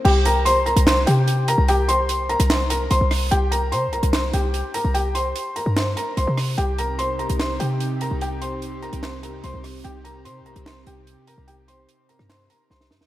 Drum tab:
CC |x---------------|----------------|----------------|----------------|
HH |--x-x-xxx-x-x-x-|x-x-x-xxx-x-x-o-|x-x-x-xxx-x-x-x-|x-x-x-x-x-x-x-o-|
CP |--------x-------|--------x-------|--------x-------|--------x-------|
SD |--------o-------|-------ro-----r-|--------o-------|--------o-----r-|

CC |----------------|----------------|----------------|----------------|
HH |x-x-x-xxx-x-x-x-|x-x-x-xxx-x-x-o-|x-x-x-xxx-x-x-x-|x-x-x-x-x-x-----|
CP |--------x-------|--------x-------|--------x-------|--------x-------|
SD |--------o-------|--------o-----r-|--------o-------|-------ro---oooo|